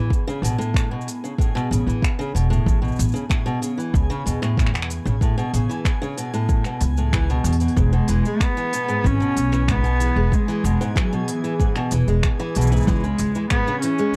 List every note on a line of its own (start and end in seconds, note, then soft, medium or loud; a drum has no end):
0.00 0.10 E3 medium
0.00 14.16 G#4 medium
0.00 14.16 G#5 medium
0.10 kick medium
0.10 shaker soft
0.28 0.42 C#3 medium
0.28 shaker soft
0.42 0.53 A1 medium
0.42 0.57 B2 medium
0.42 open hi-hat medium
0.42 shaker medium
0.58 0.89 A2 medium
0.58 shaker soft
0.74 finger snap medium
0.74 kick medium
0.74 shaker soft
0.91 1.06 B2 medium
1.01 shaker soft
1.08 open hi-hat medium
1.08 shaker medium
1.24 1.32 C#3 medium
1.24 shaker soft
1.38 1.53 A2 medium
1.38 kick medium
1.38 shaker soft
1.55 1.69 B2 medium
1.55 finger snap soft
1.55 shaker soft
1.71 1.82 A1 medium
1.71 1.86 C#3 medium
1.71 open hi-hat medium
1.71 shaker medium
1.86 1.97 A1 medium
1.86 2.02 E3 medium
1.86 shaker soft
2.02 finger snap loud
2.02 kick loud
2.02 shaker soft
2.19 2.33 C#3 medium
2.19 shaker soft
2.35 2.56 E1 medium
2.35 2.49 B2 medium
2.35 open hi-hat medium
2.35 shaker medium
2.50 2.81 A2 loud
2.50 shaker soft
2.66 2.88 A1 medium
2.66 kick medium
2.66 shaker soft
2.82 2.97 B2 medium
2.82 shaker soft
2.88 shaker soft
2.92 shaker soft
2.96 3.10 A1 loud
2.96 open hi-hat medium
2.96 shaker soft
3.00 shaker medium
3.04 shaker soft
3.08 shaker soft
3.12 3.23 C#3 medium
3.12 shaker soft
3.16 shaker soft
3.29 3.44 A2 medium
3.29 finger snap medium
3.29 kick loud
3.29 shaker soft
3.46 3.60 B2 loud
3.46 shaker soft
3.62 3.77 C#3 medium
3.62 open hi-hat medium
3.62 shaker medium
3.78 3.93 E3 medium
3.78 shaker soft
3.94 4.05 C#2 loud
3.94 kick loud
3.94 shaker soft
4.10 4.24 C#3 loud
4.10 shaker soft
4.26 4.98 E2 medium
4.26 4.40 B2 medium
4.26 open hi-hat medium
4.26 shaker medium
4.42 4.72 A2 medium
4.42 finger snap soft
4.42 shaker soft
4.57 finger snap soft
4.57 kick loud
4.57 shaker soft
4.66 finger snap medium
4.74 4.89 B2 medium
4.74 finger snap medium
4.74 shaker soft
4.82 finger snap medium
4.90 open hi-hat medium
4.90 shaker medium
5.05 5.17 A1 medium
5.05 5.15 C#3 medium
5.05 shaker soft
5.21 5.36 A2 medium
5.21 kick medium
5.21 shaker soft
5.38 5.52 B2 loud
5.38 shaker soft
5.53 5.64 A1 medium
5.53 5.69 C#3 medium
5.53 open hi-hat medium
5.53 shaker medium
5.69 5.85 E3 medium
5.69 shaker soft
5.85 finger snap medium
5.85 kick loud
5.85 shaker soft
6.02 6.16 C#3 medium
6.02 shaker soft
6.18 6.32 B2 medium
6.18 open hi-hat medium
6.18 shaker medium
6.34 6.64 A2 medium
6.34 shaker soft
6.49 kick loud
6.49 shaker soft
6.64 6.81 B2 medium
6.64 finger snap soft
6.64 shaker soft
6.81 7.37 C#2 medium
6.81 open hi-hat medium
6.81 shaker medium
6.97 7.12 A2 medium
6.97 shaker soft
7.13 7.28 E3 medium
7.13 finger snap medium
7.13 kick loud
7.13 shaker soft
7.30 7.44 B2 medium
7.30 shaker soft
7.44 7.66 E2 medium
7.44 7.55 B2 medium
7.44 open hi-hat medium
7.44 shaker medium
7.53 open hi-hat medium
7.60 7.75 B2 medium
7.60 open hi-hat soft
7.60 shaker soft
7.68 open hi-hat soft
7.77 7.99 E1 loud
7.77 7.92 G#2 medium
7.77 8.44 G#3 medium
7.77 kick loud
7.77 shaker soft
7.93 8.07 B2 medium
7.93 shaker soft
8.08 8.20 E1 medium
8.08 8.24 E3 medium
8.08 open hi-hat medium
8.08 shaker medium
8.25 8.41 G#3 medium
8.25 shaker soft
8.40 9.08 B3 loud
8.40 finger snap medium
8.40 kick loud
8.40 shaker soft
8.57 8.71 E3 medium
8.57 shaker soft
8.73 8.88 B2 medium
8.73 open hi-hat medium
8.73 shaker medium
8.88 9.03 G#2 medium
8.88 shaker soft
9.04 9.16 G#1 loud
9.04 9.19 E3 medium
9.04 9.72 C#4 loud
9.04 kick medium
9.04 shaker soft
9.20 9.36 B2 medium
9.20 shaker soft
9.37 10.08 B1 medium
9.37 open hi-hat medium
9.37 shaker medium
9.52 9.62 E3 medium
9.52 finger snap soft
9.52 shaker soft
9.68 9.83 G#2 medium
9.68 10.36 B3 loud
9.68 finger snap medium
9.68 kick medium
9.68 shaker soft
9.84 9.99 B2 medium
9.84 shaker soft
10.00 10.16 E3 medium
10.00 open hi-hat medium
10.00 shaker medium
10.16 10.27 E1 medium
10.16 10.32 G#3 medium
10.32 10.97 G#3 medium
10.32 kick medium
10.32 shaker soft
10.48 10.63 E3 medium
10.48 shaker soft
10.64 10.75 E1 loud
10.64 10.79 B2 medium
10.64 open hi-hat medium
10.64 shaker medium
10.81 10.95 G#2 loud
10.81 shaker soft
10.96 11.10 E3 medium
10.96 11.27 F#3 medium
10.96 finger snap medium
10.96 kick medium
10.96 shaker soft
11.13 11.28 B2 medium
11.13 shaker soft
11.28 11.89 E3 medium
11.28 open hi-hat medium
11.28 shaker medium
11.44 11.53 E3 medium
11.44 shaker soft
11.60 11.74 G#2 medium
11.60 kick loud
11.60 shaker soft
11.76 11.91 B2 loud
11.76 finger snap soft
11.76 shaker soft
11.91 12.03 E1 medium
11.91 12.07 E3 medium
11.91 open hi-hat medium
11.91 shaker medium
12.07 12.19 E1 medium
12.07 12.23 G#3 medium
12.07 shaker soft
12.23 finger snap medium
12.23 kick loud
12.23 shaker soft
12.40 12.54 E3 loud
12.40 shaker soft
12.55 12.78 B1 medium
12.55 12.70 B2 medium
12.55 12.88 E3 medium
12.55 open hi-hat medium
12.55 shaker medium
12.61 shaker medium
12.67 shaker soft
12.72 12.86 G#2 medium
12.72 shaker soft
12.76 shaker soft
12.80 shaker soft
12.82 shaker soft
12.84 13.09 C#2 loud
12.84 13.50 G#3 loud
12.84 kick medium
12.84 shaker soft
12.88 13.02 E3 medium
12.88 shaker soft
12.96 shaker soft
13.00 13.19 C#3 medium
13.00 shaker soft
13.04 shaker soft
13.18 13.30 C#2 medium
13.18 open hi-hat medium
13.18 shaker medium
13.35 13.45 E3 medium
13.35 shaker soft
13.50 13.66 G#2 medium
13.50 13.81 B3 loud
13.50 finger snap medium
13.50 kick medium
13.50 shaker soft
13.67 13.82 C#3 medium
13.67 shaker soft
13.82 13.99 E3 medium
13.82 14.16 C#4 loud
13.82 open hi-hat medium
13.82 shaker medium
13.98 14.15 G#3 medium
13.98 shaker soft